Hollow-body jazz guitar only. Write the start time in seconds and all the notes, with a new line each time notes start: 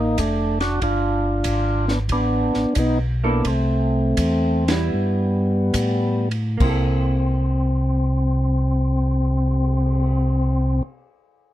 3.24 A#3 E4 A4
4.69 B3 E4
6.57 A#3
6.64 E4
6.69 A4